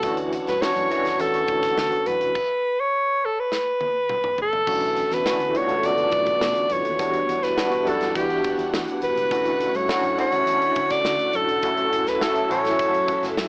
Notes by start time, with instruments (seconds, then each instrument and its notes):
Already playing: alto saxophone A4, string machine F#5 A5
0.03 fingered electric bass D2, tine electric piano E3 A3 C#4 D4 F#4, string machine C#5, kick, closed hi-hat
0.17 closed hi-hat
0.33 closed hi-hat
0.47 fingered electric bass G2, alto saxophone B4, snare, closed hi-hat
0.61 tine electric piano E3 A3 C#4 D4 F#4, alto saxophone C#5, snare
0.76 fingered electric bass F#2, closed hi-hat
0.90 tine electric piano E3 A3 C#4 D4 F#4, closed hi-hat
1.05 fingered electric bass E2, snare, closed hi-hat
1.20 fingered electric bass E2, alto saxophone A4, closed hi-hat
1.34 closed hi-hat
1.48 fingered electric bass D2, kick, closed hi-hat
1.63 kick, snare, closed hi-hat
1.78 fingered electric bass D3, snare
1.92 closed hi-hat
2.06 fingered electric bass F#2, alto saxophone B4, closed hi-hat
2.21 fingered electric bass F1, closed hi-hat
2.35 kick, crash
2.80 alto saxophone C#5
3.25 alto saxophone A4
3.40 alto saxophone B4
3.52 snare
3.81 high tom
4.09 mid tom
4.24 mid tom
4.38 alto saxophone A4, floor tom
4.53 floor tom
4.66 fingered electric bass B1, string machine D3 A3 B3, tine electric piano E3 A3 C#4 D4 F#4, kick, crash
4.81 closed hi-hat
4.97 closed hi-hat
5.11 fingered electric bass E2, alto saxophone B4, snare, closed hi-hat
5.25 tine electric piano E3 A3 C#4 D4 F#4, snare
5.40 fingered electric bass D2, closed hi-hat
5.54 tine electric piano E3 A3 B3 D4 F4, alto saxophone C#5, closed hi-hat
5.61 tine electric piano F#4
5.68 fingered electric bass C#2, closed hi-hat
5.83 fingered electric bass C#2, alto saxophone D5, closed hi-hat
5.98 closed hi-hat
6.12 fingered electric bass B1, kick, closed hi-hat
6.26 kick, closed hi-hat
6.41 fingered electric bass B2, snare
6.55 closed hi-hat
6.70 fingered electric bass F#2, alto saxophone C#5, closed hi-hat
6.85 fingered electric bass D#2, closed hi-hat
6.98 fingered electric bass E2, string machine E3 G3 D4 F#5, tine electric piano G3 B3 D4 E4 F#4, kick, closed hi-hat
7.13 closed hi-hat
7.29 fingered electric bass E2, closed hi-hat
7.43 alto saxophone B4, snare, closed hi-hat
7.57 tine electric piano G3 B3 D4 E4 F#4, snare
7.72 closed hi-hat
7.85 fingered electric bass F#2, tine electric piano G3 B3 D4 E4 F#5, alto saxophone A4, closed hi-hat
8.01 snare, closed hi-hat
8.15 fingered electric bass E3, alto saxophone G4, kick, closed hi-hat
8.30 closed hi-hat
8.44 kick, closed hi-hat
8.59 fingered electric bass E2, closed hi-hat
8.73 fingered electric bass E3, snare
8.88 closed hi-hat
9.02 fingered electric bass E2, alto saxophone B4, closed hi-hat
9.16 fingered electric bass C#2, closed hi-hat
9.30 fingered electric bass D2, string machine D3 A3, tine electric piano A3 C#4 D4 E4 F#4, kick, closed hi-hat
9.45 closed hi-hat
9.61 closed hi-hat
9.74 fingered electric bass G2, alto saxophone C#5, closed hi-hat
9.88 tine electric piano A3 C#4 D4 E4 F#4, snare
10.03 fingered electric bass F#2, closed hi-hat
10.17 tine electric piano A3 C#4 D4 E4 F#4, alto saxophone C#5, closed hi-hat
10.32 fingered electric bass E2, closed hi-hat
10.46 fingered electric bass E2, closed hi-hat
10.62 closed hi-hat
10.76 fingered electric bass D2, kick, closed hi-hat
10.90 alto saxophone D5, kick, snare, closed hi-hat
11.05 fingered electric bass D3, snare
11.19 closed hi-hat
11.33 fingered electric bass F#2, alto saxophone A4, closed hi-hat
11.48 fingered electric bass F1, closed hi-hat
11.63 fingered electric bass F#1, string machine F#3 E4 A4, tine electric piano A3 C#4 E4 F#4 A4, kick, closed hi-hat
11.77 closed hi-hat
11.92 fingered electric bass F#1, closed hi-hat
12.07 alto saxophone B4, snare, closed hi-hat
12.20 tine electric piano A3 C#4 E4 F#4 A4, alto saxophone A4, snare
12.36 closed hi-hat
12.49 fingered electric bass A1, tine electric piano A3 C#4 E4 F#4 A4, alto saxophone C#5, closed hi-hat
12.65 snare, closed hi-hat
12.79 fingered electric bass F#2, kick, closed hi-hat
12.94 closed hi-hat
13.08 kick, closed hi-hat
13.23 fingered electric bass F#1, snare, closed hi-hat
13.37 fingered electric bass F#2, snare